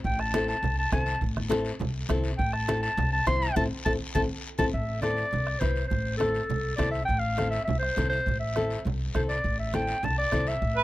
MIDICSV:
0, 0, Header, 1, 7, 480
1, 0, Start_track
1, 0, Key_signature, 0, "minor"
1, 0, Tempo, 293830
1, 74, Time_signature, 4, 2, 24, 8
1, 17700, End_track
2, 0, Start_track
2, 0, Title_t, "Clarinet"
2, 0, Program_c, 0, 71
2, 87, Note_on_c, 0, 79, 88
2, 332, Note_on_c, 0, 81, 84
2, 357, Note_off_c, 0, 79, 0
2, 787, Note_off_c, 0, 81, 0
2, 800, Note_on_c, 0, 81, 78
2, 1261, Note_off_c, 0, 81, 0
2, 1289, Note_on_c, 0, 81, 91
2, 1502, Note_off_c, 0, 81, 0
2, 1511, Note_on_c, 0, 81, 95
2, 1976, Note_off_c, 0, 81, 0
2, 3890, Note_on_c, 0, 79, 100
2, 4131, Note_on_c, 0, 81, 82
2, 4155, Note_off_c, 0, 79, 0
2, 4602, Note_off_c, 0, 81, 0
2, 4618, Note_on_c, 0, 81, 87
2, 5086, Note_off_c, 0, 81, 0
2, 5105, Note_on_c, 0, 81, 96
2, 5336, Note_off_c, 0, 81, 0
2, 5350, Note_on_c, 0, 84, 99
2, 5811, Note_off_c, 0, 84, 0
2, 5830, Note_on_c, 0, 81, 95
2, 5943, Note_off_c, 0, 81, 0
2, 6296, Note_on_c, 0, 81, 104
2, 6413, Note_off_c, 0, 81, 0
2, 6778, Note_on_c, 0, 81, 100
2, 6894, Note_off_c, 0, 81, 0
2, 7496, Note_on_c, 0, 81, 95
2, 7612, Note_off_c, 0, 81, 0
2, 7735, Note_on_c, 0, 76, 90
2, 8184, Note_off_c, 0, 76, 0
2, 8200, Note_on_c, 0, 74, 96
2, 9137, Note_on_c, 0, 72, 82
2, 9162, Note_off_c, 0, 74, 0
2, 9591, Note_off_c, 0, 72, 0
2, 9601, Note_on_c, 0, 72, 82
2, 10076, Note_off_c, 0, 72, 0
2, 10086, Note_on_c, 0, 69, 85
2, 11010, Note_off_c, 0, 69, 0
2, 11052, Note_on_c, 0, 74, 90
2, 11282, Note_off_c, 0, 74, 0
2, 11291, Note_on_c, 0, 76, 96
2, 11514, Note_off_c, 0, 76, 0
2, 11524, Note_on_c, 0, 79, 108
2, 11748, Note_on_c, 0, 77, 95
2, 11772, Note_off_c, 0, 79, 0
2, 12246, Note_off_c, 0, 77, 0
2, 12255, Note_on_c, 0, 76, 98
2, 12483, Note_off_c, 0, 76, 0
2, 12492, Note_on_c, 0, 76, 90
2, 12717, Note_off_c, 0, 76, 0
2, 12727, Note_on_c, 0, 72, 100
2, 13201, Note_off_c, 0, 72, 0
2, 13222, Note_on_c, 0, 72, 98
2, 13689, Note_off_c, 0, 72, 0
2, 13721, Note_on_c, 0, 76, 85
2, 14440, Note_off_c, 0, 76, 0
2, 14950, Note_on_c, 0, 72, 80
2, 15057, Note_off_c, 0, 72, 0
2, 15174, Note_on_c, 0, 74, 92
2, 15627, Note_off_c, 0, 74, 0
2, 15672, Note_on_c, 0, 76, 85
2, 15920, Note_on_c, 0, 79, 98
2, 15944, Note_off_c, 0, 76, 0
2, 16410, Note_on_c, 0, 81, 94
2, 16435, Note_off_c, 0, 79, 0
2, 16623, Note_off_c, 0, 81, 0
2, 16633, Note_on_c, 0, 74, 106
2, 17122, Note_on_c, 0, 76, 93
2, 17147, Note_off_c, 0, 74, 0
2, 17700, Note_off_c, 0, 76, 0
2, 17700, End_track
3, 0, Start_track
3, 0, Title_t, "Accordion"
3, 0, Program_c, 1, 21
3, 17580, Note_on_c, 1, 71, 97
3, 17700, Note_off_c, 1, 71, 0
3, 17700, End_track
4, 0, Start_track
4, 0, Title_t, "Nylon-string guitar"
4, 0, Program_c, 2, 24
4, 561, Note_on_c, 2, 60, 73
4, 566, Note_on_c, 2, 64, 67
4, 573, Note_on_c, 2, 69, 77
4, 893, Note_off_c, 2, 60, 0
4, 894, Note_off_c, 2, 64, 0
4, 895, Note_off_c, 2, 69, 0
4, 1508, Note_on_c, 2, 60, 71
4, 1519, Note_on_c, 2, 64, 69
4, 1522, Note_on_c, 2, 69, 78
4, 1846, Note_off_c, 2, 60, 0
4, 1847, Note_off_c, 2, 64, 0
4, 1851, Note_off_c, 2, 69, 0
4, 2436, Note_on_c, 2, 60, 94
4, 2441, Note_on_c, 2, 64, 81
4, 2450, Note_on_c, 2, 69, 97
4, 2787, Note_off_c, 2, 60, 0
4, 2791, Note_off_c, 2, 64, 0
4, 2792, Note_off_c, 2, 69, 0
4, 3416, Note_on_c, 2, 60, 90
4, 3425, Note_on_c, 2, 64, 84
4, 3433, Note_on_c, 2, 69, 98
4, 3758, Note_off_c, 2, 60, 0
4, 3758, Note_off_c, 2, 64, 0
4, 3765, Note_off_c, 2, 69, 0
4, 4375, Note_on_c, 2, 60, 78
4, 4378, Note_on_c, 2, 64, 72
4, 4389, Note_on_c, 2, 69, 87
4, 4716, Note_off_c, 2, 60, 0
4, 4716, Note_off_c, 2, 64, 0
4, 4722, Note_off_c, 2, 69, 0
4, 5332, Note_on_c, 2, 60, 80
4, 5338, Note_on_c, 2, 64, 74
4, 5344, Note_on_c, 2, 72, 90
4, 5673, Note_off_c, 2, 60, 0
4, 5677, Note_off_c, 2, 64, 0
4, 5678, Note_off_c, 2, 72, 0
4, 5816, Note_on_c, 2, 60, 104
4, 5821, Note_on_c, 2, 69, 95
4, 5824, Note_on_c, 2, 64, 99
4, 5972, Note_off_c, 2, 69, 0
4, 5973, Note_off_c, 2, 60, 0
4, 5977, Note_off_c, 2, 64, 0
4, 6301, Note_on_c, 2, 64, 101
4, 6305, Note_on_c, 2, 60, 101
4, 6305, Note_on_c, 2, 69, 91
4, 6454, Note_off_c, 2, 64, 0
4, 6455, Note_off_c, 2, 69, 0
4, 6458, Note_off_c, 2, 60, 0
4, 6775, Note_on_c, 2, 60, 101
4, 6777, Note_on_c, 2, 64, 111
4, 6787, Note_on_c, 2, 69, 112
4, 6932, Note_off_c, 2, 60, 0
4, 6932, Note_off_c, 2, 64, 0
4, 6934, Note_off_c, 2, 69, 0
4, 7489, Note_on_c, 2, 60, 99
4, 7494, Note_on_c, 2, 69, 105
4, 7498, Note_on_c, 2, 64, 102
4, 7648, Note_off_c, 2, 60, 0
4, 7649, Note_off_c, 2, 69, 0
4, 7653, Note_off_c, 2, 64, 0
4, 8207, Note_on_c, 2, 60, 67
4, 8214, Note_on_c, 2, 64, 62
4, 8225, Note_on_c, 2, 69, 77
4, 8550, Note_off_c, 2, 60, 0
4, 8554, Note_off_c, 2, 64, 0
4, 8559, Note_off_c, 2, 69, 0
4, 9165, Note_on_c, 2, 60, 72
4, 9177, Note_on_c, 2, 64, 70
4, 9184, Note_on_c, 2, 71, 77
4, 9509, Note_off_c, 2, 60, 0
4, 9515, Note_off_c, 2, 64, 0
4, 9519, Note_off_c, 2, 71, 0
4, 10106, Note_on_c, 2, 60, 70
4, 10120, Note_on_c, 2, 64, 66
4, 10127, Note_on_c, 2, 69, 76
4, 10460, Note_off_c, 2, 60, 0
4, 10467, Note_off_c, 2, 64, 0
4, 10471, Note_off_c, 2, 69, 0
4, 11068, Note_on_c, 2, 60, 75
4, 11081, Note_on_c, 2, 64, 70
4, 11087, Note_on_c, 2, 69, 79
4, 11422, Note_off_c, 2, 60, 0
4, 11429, Note_off_c, 2, 64, 0
4, 11430, Note_off_c, 2, 69, 0
4, 12042, Note_on_c, 2, 60, 69
4, 12053, Note_on_c, 2, 64, 64
4, 12053, Note_on_c, 2, 69, 77
4, 12390, Note_off_c, 2, 60, 0
4, 12394, Note_off_c, 2, 69, 0
4, 12395, Note_off_c, 2, 64, 0
4, 13007, Note_on_c, 2, 60, 75
4, 13017, Note_on_c, 2, 64, 73
4, 13030, Note_on_c, 2, 69, 84
4, 13353, Note_off_c, 2, 60, 0
4, 13358, Note_off_c, 2, 64, 0
4, 13361, Note_off_c, 2, 69, 0
4, 13978, Note_on_c, 2, 60, 67
4, 13987, Note_on_c, 2, 64, 64
4, 13989, Note_on_c, 2, 69, 82
4, 14319, Note_off_c, 2, 60, 0
4, 14321, Note_off_c, 2, 64, 0
4, 14324, Note_off_c, 2, 69, 0
4, 14939, Note_on_c, 2, 60, 71
4, 14951, Note_on_c, 2, 64, 61
4, 14951, Note_on_c, 2, 69, 80
4, 15279, Note_off_c, 2, 60, 0
4, 15284, Note_off_c, 2, 69, 0
4, 15286, Note_off_c, 2, 64, 0
4, 15900, Note_on_c, 2, 60, 71
4, 15907, Note_on_c, 2, 64, 62
4, 15915, Note_on_c, 2, 69, 83
4, 16241, Note_off_c, 2, 60, 0
4, 16242, Note_off_c, 2, 64, 0
4, 16248, Note_off_c, 2, 69, 0
4, 16855, Note_on_c, 2, 60, 74
4, 16866, Note_on_c, 2, 64, 68
4, 16870, Note_on_c, 2, 69, 78
4, 17199, Note_off_c, 2, 60, 0
4, 17204, Note_off_c, 2, 69, 0
4, 17205, Note_off_c, 2, 64, 0
4, 17700, End_track
5, 0, Start_track
5, 0, Title_t, "Upright bass"
5, 0, Program_c, 3, 32
5, 75, Note_on_c, 3, 33, 102
5, 841, Note_off_c, 3, 33, 0
5, 1022, Note_on_c, 3, 36, 100
5, 1409, Note_off_c, 3, 36, 0
5, 1509, Note_on_c, 3, 36, 105
5, 1893, Note_off_c, 3, 36, 0
5, 1987, Note_on_c, 3, 33, 95
5, 2754, Note_off_c, 3, 33, 0
5, 2939, Note_on_c, 3, 36, 100
5, 3326, Note_off_c, 3, 36, 0
5, 3421, Note_on_c, 3, 36, 99
5, 3806, Note_off_c, 3, 36, 0
5, 3901, Note_on_c, 3, 33, 102
5, 4669, Note_off_c, 3, 33, 0
5, 4858, Note_on_c, 3, 36, 113
5, 5244, Note_off_c, 3, 36, 0
5, 5338, Note_on_c, 3, 36, 104
5, 5724, Note_off_c, 3, 36, 0
5, 5821, Note_on_c, 3, 33, 112
5, 6000, Note_off_c, 3, 33, 0
5, 6306, Note_on_c, 3, 33, 101
5, 6482, Note_off_c, 3, 33, 0
5, 6782, Note_on_c, 3, 33, 104
5, 6960, Note_off_c, 3, 33, 0
5, 7507, Note_on_c, 3, 33, 95
5, 7682, Note_off_c, 3, 33, 0
5, 7739, Note_on_c, 3, 33, 97
5, 8508, Note_off_c, 3, 33, 0
5, 8710, Note_on_c, 3, 36, 101
5, 9091, Note_off_c, 3, 36, 0
5, 9180, Note_on_c, 3, 36, 93
5, 9564, Note_off_c, 3, 36, 0
5, 9654, Note_on_c, 3, 33, 96
5, 10426, Note_off_c, 3, 33, 0
5, 10611, Note_on_c, 3, 36, 89
5, 11000, Note_off_c, 3, 36, 0
5, 11094, Note_on_c, 3, 36, 102
5, 11482, Note_off_c, 3, 36, 0
5, 11580, Note_on_c, 3, 33, 105
5, 12350, Note_off_c, 3, 33, 0
5, 12540, Note_on_c, 3, 36, 95
5, 12926, Note_off_c, 3, 36, 0
5, 13022, Note_on_c, 3, 36, 97
5, 13408, Note_off_c, 3, 36, 0
5, 13502, Note_on_c, 3, 33, 95
5, 14272, Note_off_c, 3, 33, 0
5, 14462, Note_on_c, 3, 36, 99
5, 14848, Note_off_c, 3, 36, 0
5, 14947, Note_on_c, 3, 36, 94
5, 15332, Note_off_c, 3, 36, 0
5, 15428, Note_on_c, 3, 33, 98
5, 16197, Note_off_c, 3, 33, 0
5, 16388, Note_on_c, 3, 36, 104
5, 16773, Note_off_c, 3, 36, 0
5, 16862, Note_on_c, 3, 36, 99
5, 17249, Note_off_c, 3, 36, 0
5, 17347, Note_on_c, 3, 33, 98
5, 17700, Note_off_c, 3, 33, 0
5, 17700, End_track
6, 0, Start_track
6, 0, Title_t, "Two-headed folk drums"
6, 74, Note_on_c, 9, 36, 90
6, 238, Note_off_c, 9, 36, 0
6, 317, Note_on_c, 9, 37, 74
6, 481, Note_off_c, 9, 37, 0
6, 555, Note_on_c, 9, 37, 88
6, 718, Note_off_c, 9, 37, 0
6, 1508, Note_on_c, 9, 36, 87
6, 1510, Note_on_c, 9, 37, 92
6, 1671, Note_off_c, 9, 36, 0
6, 1674, Note_off_c, 9, 37, 0
6, 1983, Note_on_c, 9, 36, 96
6, 2146, Note_off_c, 9, 36, 0
6, 2236, Note_on_c, 9, 37, 82
6, 2400, Note_off_c, 9, 37, 0
6, 2468, Note_on_c, 9, 37, 79
6, 2631, Note_off_c, 9, 37, 0
6, 3421, Note_on_c, 9, 36, 87
6, 3422, Note_on_c, 9, 37, 94
6, 3585, Note_off_c, 9, 36, 0
6, 3586, Note_off_c, 9, 37, 0
6, 3902, Note_on_c, 9, 36, 91
6, 4065, Note_off_c, 9, 36, 0
6, 4138, Note_on_c, 9, 37, 77
6, 4301, Note_off_c, 9, 37, 0
6, 4387, Note_on_c, 9, 37, 86
6, 4551, Note_off_c, 9, 37, 0
6, 5341, Note_on_c, 9, 36, 96
6, 5343, Note_on_c, 9, 37, 85
6, 5504, Note_off_c, 9, 36, 0
6, 5506, Note_off_c, 9, 37, 0
6, 5821, Note_on_c, 9, 36, 103
6, 5985, Note_off_c, 9, 36, 0
6, 6304, Note_on_c, 9, 36, 111
6, 6467, Note_off_c, 9, 36, 0
6, 6784, Note_on_c, 9, 36, 102
6, 6947, Note_off_c, 9, 36, 0
6, 7502, Note_on_c, 9, 36, 110
6, 7665, Note_off_c, 9, 36, 0
6, 7738, Note_on_c, 9, 36, 80
6, 7901, Note_off_c, 9, 36, 0
6, 8219, Note_on_c, 9, 37, 85
6, 8383, Note_off_c, 9, 37, 0
6, 8931, Note_on_c, 9, 37, 73
6, 9095, Note_off_c, 9, 37, 0
6, 9176, Note_on_c, 9, 36, 83
6, 9176, Note_on_c, 9, 37, 85
6, 9339, Note_off_c, 9, 36, 0
6, 9339, Note_off_c, 9, 37, 0
6, 9654, Note_on_c, 9, 36, 86
6, 9817, Note_off_c, 9, 36, 0
6, 10143, Note_on_c, 9, 37, 87
6, 10306, Note_off_c, 9, 37, 0
6, 11094, Note_on_c, 9, 37, 82
6, 11097, Note_on_c, 9, 36, 85
6, 11257, Note_off_c, 9, 37, 0
6, 11261, Note_off_c, 9, 36, 0
6, 11576, Note_on_c, 9, 36, 77
6, 11739, Note_off_c, 9, 36, 0
6, 12061, Note_on_c, 9, 37, 82
6, 12224, Note_off_c, 9, 37, 0
6, 12787, Note_on_c, 9, 37, 72
6, 12951, Note_off_c, 9, 37, 0
6, 13023, Note_on_c, 9, 36, 84
6, 13036, Note_on_c, 9, 37, 86
6, 13186, Note_off_c, 9, 36, 0
6, 13199, Note_off_c, 9, 37, 0
6, 13501, Note_on_c, 9, 36, 85
6, 13665, Note_off_c, 9, 36, 0
6, 13982, Note_on_c, 9, 37, 84
6, 14145, Note_off_c, 9, 37, 0
6, 14946, Note_on_c, 9, 37, 86
6, 14947, Note_on_c, 9, 36, 87
6, 15109, Note_off_c, 9, 37, 0
6, 15111, Note_off_c, 9, 36, 0
6, 15428, Note_on_c, 9, 36, 82
6, 15591, Note_off_c, 9, 36, 0
6, 15908, Note_on_c, 9, 37, 85
6, 16071, Note_off_c, 9, 37, 0
6, 16862, Note_on_c, 9, 37, 85
6, 16866, Note_on_c, 9, 36, 85
6, 17026, Note_off_c, 9, 37, 0
6, 17030, Note_off_c, 9, 36, 0
6, 17345, Note_on_c, 9, 36, 83
6, 17508, Note_off_c, 9, 36, 0
6, 17700, End_track
7, 0, Start_track
7, 0, Title_t, "Drums"
7, 71, Note_on_c, 9, 74, 67
7, 77, Note_on_c, 9, 63, 34
7, 234, Note_off_c, 9, 74, 0
7, 240, Note_off_c, 9, 63, 0
7, 554, Note_on_c, 9, 73, 71
7, 555, Note_on_c, 9, 63, 90
7, 717, Note_off_c, 9, 73, 0
7, 719, Note_off_c, 9, 63, 0
7, 788, Note_on_c, 9, 73, 70
7, 951, Note_off_c, 9, 73, 0
7, 1025, Note_on_c, 9, 74, 79
7, 1044, Note_on_c, 9, 63, 39
7, 1044, Note_on_c, 9, 64, 82
7, 1188, Note_off_c, 9, 74, 0
7, 1207, Note_off_c, 9, 63, 0
7, 1207, Note_off_c, 9, 64, 0
7, 1498, Note_on_c, 9, 73, 79
7, 1510, Note_on_c, 9, 63, 85
7, 1662, Note_off_c, 9, 73, 0
7, 1673, Note_off_c, 9, 63, 0
7, 1733, Note_on_c, 9, 73, 82
7, 1896, Note_off_c, 9, 73, 0
7, 1979, Note_on_c, 9, 74, 66
7, 1993, Note_on_c, 9, 63, 35
7, 2143, Note_off_c, 9, 74, 0
7, 2157, Note_off_c, 9, 63, 0
7, 2236, Note_on_c, 9, 63, 67
7, 2399, Note_off_c, 9, 63, 0
7, 2455, Note_on_c, 9, 73, 63
7, 2477, Note_on_c, 9, 63, 92
7, 2618, Note_off_c, 9, 73, 0
7, 2641, Note_off_c, 9, 63, 0
7, 2693, Note_on_c, 9, 73, 70
7, 2856, Note_off_c, 9, 73, 0
7, 2931, Note_on_c, 9, 74, 72
7, 2954, Note_on_c, 9, 63, 37
7, 2954, Note_on_c, 9, 64, 86
7, 3094, Note_off_c, 9, 74, 0
7, 3117, Note_off_c, 9, 63, 0
7, 3117, Note_off_c, 9, 64, 0
7, 3408, Note_on_c, 9, 73, 74
7, 3413, Note_on_c, 9, 63, 91
7, 3572, Note_off_c, 9, 73, 0
7, 3576, Note_off_c, 9, 63, 0
7, 3656, Note_on_c, 9, 73, 72
7, 3819, Note_off_c, 9, 73, 0
7, 3901, Note_on_c, 9, 74, 65
7, 3916, Note_on_c, 9, 63, 36
7, 4065, Note_off_c, 9, 74, 0
7, 4080, Note_off_c, 9, 63, 0
7, 4381, Note_on_c, 9, 73, 74
7, 4391, Note_on_c, 9, 63, 89
7, 4544, Note_off_c, 9, 73, 0
7, 4554, Note_off_c, 9, 63, 0
7, 4624, Note_on_c, 9, 73, 69
7, 4787, Note_off_c, 9, 73, 0
7, 4862, Note_on_c, 9, 74, 68
7, 4874, Note_on_c, 9, 63, 34
7, 4874, Note_on_c, 9, 64, 92
7, 5025, Note_off_c, 9, 74, 0
7, 5037, Note_off_c, 9, 63, 0
7, 5037, Note_off_c, 9, 64, 0
7, 5345, Note_on_c, 9, 73, 75
7, 5350, Note_on_c, 9, 63, 84
7, 5508, Note_off_c, 9, 73, 0
7, 5514, Note_off_c, 9, 63, 0
7, 5589, Note_on_c, 9, 73, 78
7, 5752, Note_off_c, 9, 73, 0
7, 5820, Note_on_c, 9, 74, 93
7, 5830, Note_on_c, 9, 63, 88
7, 5984, Note_off_c, 9, 74, 0
7, 5993, Note_off_c, 9, 63, 0
7, 6296, Note_on_c, 9, 74, 101
7, 6307, Note_on_c, 9, 63, 88
7, 6460, Note_off_c, 9, 74, 0
7, 6471, Note_off_c, 9, 63, 0
7, 6775, Note_on_c, 9, 74, 94
7, 6787, Note_on_c, 9, 63, 98
7, 6939, Note_off_c, 9, 74, 0
7, 6950, Note_off_c, 9, 63, 0
7, 7479, Note_on_c, 9, 74, 115
7, 7492, Note_on_c, 9, 63, 98
7, 7642, Note_off_c, 9, 74, 0
7, 7655, Note_off_c, 9, 63, 0
7, 7719, Note_on_c, 9, 74, 58
7, 7733, Note_on_c, 9, 63, 33
7, 7882, Note_off_c, 9, 74, 0
7, 7896, Note_off_c, 9, 63, 0
7, 8198, Note_on_c, 9, 73, 72
7, 8200, Note_on_c, 9, 63, 72
7, 8361, Note_off_c, 9, 73, 0
7, 8363, Note_off_c, 9, 63, 0
7, 8439, Note_on_c, 9, 73, 64
7, 8603, Note_off_c, 9, 73, 0
7, 8675, Note_on_c, 9, 74, 70
7, 8702, Note_on_c, 9, 63, 33
7, 8702, Note_on_c, 9, 64, 74
7, 8838, Note_off_c, 9, 74, 0
7, 8866, Note_off_c, 9, 63, 0
7, 8866, Note_off_c, 9, 64, 0
7, 9161, Note_on_c, 9, 73, 73
7, 9167, Note_on_c, 9, 63, 81
7, 9324, Note_off_c, 9, 73, 0
7, 9330, Note_off_c, 9, 63, 0
7, 9403, Note_on_c, 9, 73, 74
7, 9567, Note_off_c, 9, 73, 0
7, 9641, Note_on_c, 9, 74, 62
7, 9660, Note_on_c, 9, 63, 32
7, 9660, Note_on_c, 9, 64, 68
7, 9804, Note_off_c, 9, 74, 0
7, 9823, Note_off_c, 9, 63, 0
7, 9823, Note_off_c, 9, 64, 0
7, 10128, Note_on_c, 9, 73, 65
7, 10145, Note_on_c, 9, 63, 72
7, 10292, Note_off_c, 9, 73, 0
7, 10309, Note_off_c, 9, 63, 0
7, 10365, Note_on_c, 9, 73, 72
7, 10528, Note_off_c, 9, 73, 0
7, 10612, Note_on_c, 9, 74, 75
7, 10621, Note_on_c, 9, 63, 32
7, 10621, Note_on_c, 9, 64, 84
7, 10776, Note_off_c, 9, 74, 0
7, 10785, Note_off_c, 9, 63, 0
7, 10785, Note_off_c, 9, 64, 0
7, 11086, Note_on_c, 9, 73, 73
7, 11105, Note_on_c, 9, 63, 80
7, 11249, Note_off_c, 9, 73, 0
7, 11268, Note_off_c, 9, 63, 0
7, 11332, Note_on_c, 9, 73, 70
7, 11495, Note_off_c, 9, 73, 0
7, 11566, Note_on_c, 9, 74, 61
7, 11594, Note_on_c, 9, 63, 33
7, 11730, Note_off_c, 9, 74, 0
7, 11757, Note_off_c, 9, 63, 0
7, 12048, Note_on_c, 9, 73, 66
7, 12071, Note_on_c, 9, 63, 78
7, 12211, Note_off_c, 9, 73, 0
7, 12235, Note_off_c, 9, 63, 0
7, 12285, Note_on_c, 9, 73, 65
7, 12449, Note_off_c, 9, 73, 0
7, 12541, Note_on_c, 9, 74, 72
7, 12559, Note_on_c, 9, 63, 31
7, 12559, Note_on_c, 9, 64, 89
7, 12705, Note_off_c, 9, 74, 0
7, 12722, Note_off_c, 9, 63, 0
7, 12722, Note_off_c, 9, 64, 0
7, 13016, Note_on_c, 9, 73, 76
7, 13047, Note_on_c, 9, 63, 76
7, 13180, Note_off_c, 9, 73, 0
7, 13210, Note_off_c, 9, 63, 0
7, 13256, Note_on_c, 9, 73, 72
7, 13420, Note_off_c, 9, 73, 0
7, 13497, Note_on_c, 9, 74, 64
7, 13531, Note_on_c, 9, 63, 34
7, 13531, Note_on_c, 9, 64, 69
7, 13660, Note_off_c, 9, 74, 0
7, 13695, Note_off_c, 9, 63, 0
7, 13695, Note_off_c, 9, 64, 0
7, 13967, Note_on_c, 9, 73, 62
7, 14005, Note_on_c, 9, 63, 70
7, 14131, Note_off_c, 9, 73, 0
7, 14169, Note_off_c, 9, 63, 0
7, 14218, Note_on_c, 9, 73, 71
7, 14382, Note_off_c, 9, 73, 0
7, 14454, Note_on_c, 9, 74, 69
7, 14486, Note_on_c, 9, 63, 34
7, 14486, Note_on_c, 9, 64, 79
7, 14617, Note_off_c, 9, 74, 0
7, 14649, Note_off_c, 9, 63, 0
7, 14649, Note_off_c, 9, 64, 0
7, 14933, Note_on_c, 9, 73, 70
7, 14959, Note_on_c, 9, 63, 77
7, 15097, Note_off_c, 9, 73, 0
7, 15122, Note_off_c, 9, 63, 0
7, 15178, Note_on_c, 9, 73, 72
7, 15342, Note_off_c, 9, 73, 0
7, 15422, Note_on_c, 9, 74, 64
7, 15442, Note_on_c, 9, 63, 33
7, 15586, Note_off_c, 9, 74, 0
7, 15605, Note_off_c, 9, 63, 0
7, 15899, Note_on_c, 9, 73, 67
7, 15908, Note_on_c, 9, 63, 78
7, 16063, Note_off_c, 9, 73, 0
7, 16071, Note_off_c, 9, 63, 0
7, 16132, Note_on_c, 9, 73, 71
7, 16295, Note_off_c, 9, 73, 0
7, 16383, Note_on_c, 9, 74, 66
7, 16401, Note_on_c, 9, 63, 33
7, 16401, Note_on_c, 9, 64, 84
7, 16547, Note_off_c, 9, 74, 0
7, 16565, Note_off_c, 9, 63, 0
7, 16565, Note_off_c, 9, 64, 0
7, 16854, Note_on_c, 9, 73, 75
7, 16881, Note_on_c, 9, 63, 81
7, 17017, Note_off_c, 9, 73, 0
7, 17045, Note_off_c, 9, 63, 0
7, 17100, Note_on_c, 9, 73, 71
7, 17264, Note_off_c, 9, 73, 0
7, 17351, Note_on_c, 9, 74, 64
7, 17357, Note_on_c, 9, 63, 34
7, 17515, Note_off_c, 9, 74, 0
7, 17520, Note_off_c, 9, 63, 0
7, 17700, End_track
0, 0, End_of_file